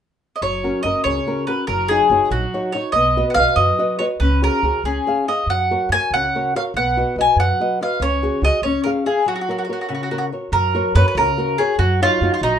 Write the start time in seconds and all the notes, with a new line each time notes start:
0.36 D#5
0.42 F#1 F#3 C#5
0.64 C#4 F#4 A#4
0.83 F#1 C#4 F#4 A#4 D#5
1.04 C#2 C#3 C#5
1.27 C#4 F#4 A#4
1.47 C#4 F#4 A#4 B4
1.67 F#1 F#3 A#4
1.88 D#4 F#4 G#4 C#5
2.10 F#1 D#4 F#4 C#5
2.30 A#1 F#3 F#4
2.54 D#4 F#4 C#5
2.72 D#4 F#4 C#5
2.92 B1 B3 D#5
3.17 F#4 B4 D#5
3.30 F#5
3.34 B1 F#4 F5
3.39 B4 D#5
3.56 F#2 F#3 D#5
3.78 F#4 B4 D#5
3.99 F#4 B4 C#5 D#5
4.20 C#2 C#4 B4
4.42 F#4 G#4 A#4 C#5
4.62 C#2 F#4 G#4 C#5
4.83 C#2 C#4 G#4
5.07 G#4 C#5 F5
5.28 G#4 C#5 D#5 F5
5.46 F#2 F#3 F#5
5.71 F#4 A#4 C#5
5.89 F#2 F#4 G#5
5.93 A#4 C#5
6.11 C#2 C#3 F#5
6.35 F#4 A#4 C#5
6.55 F#4 A#4 C#5 F5
6.74 B1 B3 F#5
6.97 F#4 B4 D#5
7.16 B1 F#4 B4 D#5
7.21 G#5
7.36 F#2 F#3 F#5
7.60 F#4 B4 D#5
7.81 F#4 B4 D#5 F5
8.00 C#2 C#4 C#5
8.23 F#4 G#4 C#5
8.42 C#2 F#4 G#4 C#5 D#5
8.62 C#2 C#4 C#5
8.84 G#4 A#4 C#5 F5
9.06 G#4 C#5 F5
9.26 F#3 F#4
9.36 F#4
9.41 F#4
9.49 F#4 A#4 C#5
9.58 F#4
9.65 F#4
9.69 F#4 A#4 C#5
9.81 F#4
9.89 C#3 F#4
9.95 F#4
10.03 F#4
10.11 F#4 A#4 C#5
10.18 F#4
10.32 F#4 A#4 C#5
10.52 F#2 F#3 A#4
10.74 F#4 A#4 C#5
10.95 F#2 F#4 A#4 B4 C#5
11.08 B4
11.15 C#2 C#3 A#4
11.38 F#4 A#4 C#5
11.58 F#4 G#4 A#4 C#5
11.79 F#2 F#3 F#4
12.02 F#3 D#4 F4 C#5
12.21 F#2 D#4 F#4 C#5
12.34 F4
12.42 A#1 F#3 D#4